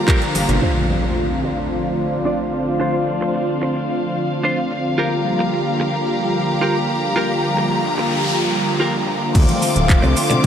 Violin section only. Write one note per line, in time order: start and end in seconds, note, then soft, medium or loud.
0.00 0.58 G4 medium
0.00 0.58 F5 medium
0.00 0.58 A#5 medium
0.62 4.95 D4 medium
0.62 4.95 C5 medium
0.62 9.31 F5 medium
4.98 9.31 G4 medium
4.98 9.31 A#5 medium
9.35 10.46 C5 medium
9.35 10.46 F5 medium
9.35 10.46 D6 medium